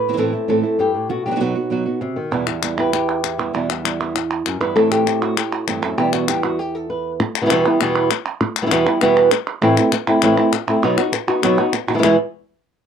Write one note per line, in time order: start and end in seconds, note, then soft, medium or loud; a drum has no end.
0.00 0.93 A2 medium
0.00 0.18 B4 loud
0.08 0.12 E3 medium
0.08 0.12 A3 medium
0.08 0.12 C4 medium
0.08 0.13 E4 medium
0.13 0.17 E3 medium
0.13 0.17 A3 medium
0.13 0.17 C4 medium
0.13 0.17 E4 medium
0.17 0.32 A2 medium
0.17 0.32 E3 medium
0.17 0.33 A3 medium
0.17 0.33 C4 medium
0.17 0.32 E4 medium
0.17 0.49 A4 medium
0.33 0.48 A3 soft
0.33 0.48 C4 soft
0.33 0.48 E4 soft
0.48 0.63 A2 medium
0.48 0.63 E3 medium
0.48 0.63 A3 medium
0.48 0.63 C4 medium
0.48 0.62 E4 medium
0.48 0.80 A4 medium
0.63 0.78 A3 soft
0.63 0.79 C4 soft
0.63 0.78 E4 soft
0.79 0.94 G2 medium
0.79 1.10 G4 medium
0.79 muted nylon-string guitar stroke medium
0.94 1.10 A2 medium
1.09 2.30 B2 medium
1.09 1.25 F#4 medium
1.09 muted nylon-string guitar stroke medium
1.26 1.30 F#3 medium
1.26 1.30 B3 medium
1.26 1.31 D#4 soft
1.26 1.31 F#4 medium
1.26 1.41 G4 medium
1.31 1.34 F#3 medium
1.31 1.35 B3 medium
1.31 1.35 D#4 medium
1.31 1.36 F#4 medium
1.36 1.39 F#3 medium
1.36 1.40 B3 medium
1.36 1.40 D#4 medium
1.36 1.40 F#4 medium
1.40 1.55 B2 medium
1.40 1.55 F#3 medium
1.40 1.55 B3 medium
1.40 1.55 D#4 medium
1.40 2.32 F#4 medium
1.40 1.54 F#4 medium
1.55 1.70 B3 soft
1.55 1.70 D#4 soft
1.55 1.70 F#4 soft
1.70 1.85 B2 medium
1.70 1.85 F#3 medium
1.70 1.86 B3 medium
1.70 1.85 D#4 medium
1.70 1.84 F#4 medium
1.86 2.00 B3 soft
1.86 2.01 D#4 soft
1.86 2.00 F#4 soft
2.01 2.16 C3 medium
2.01 muted nylon-string guitar stroke medium
2.16 2.32 D#3 medium
2.31 2.46 E2 medium
2.31 3.53 E2 medium
2.31 2.47 B2 medium
2.31 2.47 E3 medium
2.31 2.47 G3 medium
2.31 2.46 B3 medium
2.31 2.45 E4 medium
2.47 2.61 E3 soft
2.47 2.62 G3 soft
2.47 2.62 B3 medium
2.47 2.62 E4 soft
2.47 clap medium
2.62 2.77 E3 medium
2.62 2.77 G3 medium
2.62 2.77 B3 medium
2.62 2.76 E4 medium
2.62 clap medium
2.77 2.92 E3 soft
2.77 2.92 G3 soft
2.77 2.92 B3 soft
2.77 2.92 E4 soft
2.77 3.23 E4 medium
2.77 2.92 G4 medium
2.77 3.53 B4 medium
2.93 3.52 G4 medium
2.93 muted nylon-string guitar stroke medium
2.93 clap medium
3.24 4.49 E4 medium
3.24 clap medium
3.38 3.53 E3 soft
3.38 3.53 G3 soft
3.38 3.54 B3 soft
3.38 3.53 E4 medium
3.53 3.68 E2 medium
3.53 4.46 E2 medium
3.53 3.69 B2 medium
3.53 3.69 E3 medium
3.53 3.69 G3 medium
3.53 3.69 B3 medium
3.53 3.68 E4 medium
3.69 3.83 E3 soft
3.69 3.84 G3 soft
3.69 3.84 B3 soft
3.69 3.84 E4 soft
3.69 clap medium
3.84 3.99 E3 soft
3.84 3.99 G3 medium
3.84 3.99 B3 medium
3.84 3.98 E4 medium
3.84 clap loud
4.00 4.14 E3 soft
4.00 4.15 G3 soft
4.00 4.15 B3 soft
4.00 4.14 E4 soft
4.15 muted nylon-string guitar stroke medium
4.15 clap medium
4.46 4.60 F#2 medium
4.46 clap medium
4.61 4.76 G2 medium
4.61 4.75 E3 soft
4.61 4.76 G3 soft
4.61 4.76 B3 soft
4.61 4.76 E4 medium
4.61 4.76 B4 loud
4.76 5.06 A2 medium
4.76 5.98 A2 medium
4.76 5.06 E3 medium
4.76 5.06 A3 medium
4.76 5.06 C4 medium
4.76 5.05 E4 medium
4.76 4.91 A4 loud
4.92 5.22 G4 loud
4.92 clap medium
5.06 5.36 A3 soft
5.06 5.36 C4 medium
5.06 5.36 E4 medium
5.06 clap medium
5.22 5.37 F#4 medium
5.37 5.52 G4 loud
5.37 muted nylon-string guitar stroke medium
5.37 clap medium
5.52 5.68 F#4 medium
5.67 5.83 G2 medium
5.67 5.82 E3 soft
5.67 5.83 A3 medium
5.67 5.82 C4 medium
5.67 5.81 E4 medium
5.67 5.82 G4 medium
5.67 clap medium
5.82 5.98 F#2 medium
5.82 5.98 A3 soft
5.82 5.98 C4 soft
5.82 5.97 E4 medium
5.82 5.97 A4 loud
5.98 6.28 E2 medium
5.98 7.19 E2 medium
5.98 6.28 B2 medium
5.98 6.28 E3 medium
5.98 6.28 G3 medium
5.98 6.28 B3 medium
5.98 6.58 B3 soft
5.98 6.27 E4 medium
5.98 6.58 E4 medium
5.98 6.13 G4 loud
6.13 6.29 F#4 medium
6.13 clap medium
6.28 6.59 E3 soft
6.28 6.59 G3 soft
6.28 6.59 B3 soft
6.28 6.58 E4 soft
6.28 6.44 G4 medium
6.28 clap loud
6.44 6.59 F#4 medium
6.59 6.75 G4 medium
6.75 6.90 A4 medium
6.90 7.11 B4 medium
7.20 muted nylon-string guitar stroke medium
7.35 clap loud
7.41 7.45 B2 medium
7.41 7.45 E3 medium
7.41 7.45 G3 medium
7.41 7.46 B3 medium
7.41 7.46 E4 medium
7.46 7.50 B2 medium
7.46 7.50 E3 medium
7.46 7.50 G3 medium
7.46 7.50 B3 medium
7.46 7.50 E4 medium
7.50 7.65 E2 loud
7.50 7.65 B2 loud
7.50 7.65 E3 loud
7.50 7.65 G3 loud
7.50 7.65 B3 loud
7.50 7.64 E4 loud
7.50 clap loud
7.66 7.80 E3 medium
7.66 7.80 G3 medium
7.66 7.80 B3 medium
7.66 7.80 E4 medium
7.80 8.09 E2 medium
7.80 8.10 B2 medium
7.80 8.10 E3 medium
7.80 8.10 G3 loud
7.80 8.10 B3 loud
7.80 8.10 E4 medium
7.80 clap loud
8.11 muted nylon-string guitar stroke medium
8.11 clap loud
8.41 muted nylon-string guitar stroke medium
8.56 clap medium
8.62 8.65 B2 medium
8.62 8.65 E3 medium
8.62 8.66 G3 medium
8.62 8.66 B3 medium
8.62 8.66 E4 medium
8.66 8.70 B2 medium
8.66 8.70 E3 medium
8.66 8.70 G3 medium
8.66 8.71 B3 medium
8.66 8.71 E4 medium
8.71 8.85 E2 medium
8.71 8.86 B2 loud
8.71 8.86 E3 loud
8.71 8.86 G3 loud
8.71 8.86 B3 loud
8.71 8.85 E4 loud
8.71 clap loud
8.86 9.01 E3 medium
8.86 9.01 G3 medium
8.86 9.01 B3 medium
8.86 9.01 E4 medium
9.01 9.30 E2 loud
9.01 9.30 B2 medium
9.01 9.31 E3 medium
9.01 9.31 G3 loud
9.01 9.31 B3 loud
9.01 9.31 E4 medium
9.01 clap medium
9.31 muted nylon-string guitar stroke medium
9.31 clap loud
9.62 9.76 A2 medium
9.62 9.76 A2 loud
9.62 9.77 E3 medium
9.62 9.77 A3 medium
9.62 9.77 C4 loud
9.62 9.77 C4 medium
9.62 9.76 E4 medium
9.77 9.91 A3 soft
9.77 9.92 A3 soft
9.77 9.92 C4 soft
9.77 9.92 C4 medium
9.77 9.92 E4 soft
9.77 9.92 E4 medium
9.77 clap medium
9.92 muted nylon-string guitar stroke medium
9.92 clap loud
10.07 10.22 A3 soft
10.07 10.22 A3 medium
10.07 10.22 C4 soft
10.07 10.22 C4 medium
10.07 10.22 E4 medium
10.22 10.37 A2 medium
10.22 10.37 A2 loud
10.22 10.37 E3 medium
10.22 10.37 E3 loud
10.22 10.37 A3 medium
10.22 10.37 A3 loud
10.22 10.37 C4 medium
10.22 10.38 C4 loud
10.22 10.36 E4 medium
10.22 10.37 E4 loud
10.22 clap medium
10.37 10.52 A3 soft
10.37 10.53 A3 medium
10.37 10.52 C4 soft
10.37 10.53 C4 medium
10.37 10.52 E4 soft
10.37 10.52 E4 medium
10.52 muted nylon-string guitar stroke medium
10.52 clap loud
10.67 10.83 A3 soft
10.67 10.83 A3 medium
10.67 10.82 C4 medium
10.67 10.83 C4 soft
10.67 10.82 E4 medium
10.82 10.97 B2 medium
10.82 10.97 F#3 medium
10.82 10.98 F#3 medium
10.82 10.97 B3 medium
10.82 10.98 B3 medium
10.82 10.97 D#4 medium
10.82 10.98 D#4 loud
10.82 10.96 F#4 medium
10.82 10.97 F#4 medium
10.97 11.12 B3 soft
10.97 11.12 B3 medium
10.97 11.12 D#4 soft
10.97 11.13 D#4 medium
10.97 11.12 F#4 medium
10.97 clap medium
11.12 muted nylon-string guitar stroke medium
11.12 clap medium
11.27 11.42 B3 soft
11.27 11.43 B3 soft
11.27 11.43 D#4 soft
11.27 11.43 D#4 medium
11.27 11.42 F#4 soft
11.27 11.42 F#4 medium
11.42 11.57 B2 medium
11.42 11.57 F#3 medium
11.42 11.58 F#3 medium
11.42 11.58 B3 medium
11.42 11.57 D#4 medium
11.42 11.58 D#4 medium
11.42 11.56 F#4 medium
11.42 11.57 F#4 loud
11.42 clap medium
11.57 11.72 B3 soft
11.57 11.73 B3 medium
11.57 11.72 D#4 soft
11.57 11.73 D#4 medium
11.57 11.72 F#4 medium
11.57 11.73 F#4 medium
11.73 muted nylon-string guitar stroke medium
11.73 clap medium
11.87 11.92 B2 soft
11.87 11.93 E3 soft
11.87 11.93 G#3 soft
11.87 11.94 B3 medium
11.87 11.94 D#4 medium
11.87 11.93 E4 soft
11.87 11.94 F#4 soft
11.87 11.95 F#4 medium
11.93 11.97 B2 medium
11.93 11.97 E3 soft
11.93 11.98 E3 medium
11.93 11.97 G#3 medium
11.93 11.98 G#3 medium
11.93 11.98 B3 medium
11.93 11.98 E4 medium
11.93 11.99 E4 medium
11.98 12.02 B2 medium
11.98 12.02 E3 medium
11.98 12.02 G#3 medium
11.98 12.03 G#3 medium
11.98 12.02 B3 medium
11.98 12.03 B3 medium
11.98 12.03 E4 medium
12.03 12.15 E2 medium
12.03 12.15 E2 loud
12.03 12.15 B2 medium
12.03 12.15 E3 medium
12.03 12.16 E3 loud
12.03 12.15 G#3 medium
12.03 12.16 G#3 loud
12.03 12.15 B3 medium
12.03 12.16 B3 loud
12.03 12.16 E4 medium
12.03 12.16 E4 loud
12.03 clap medium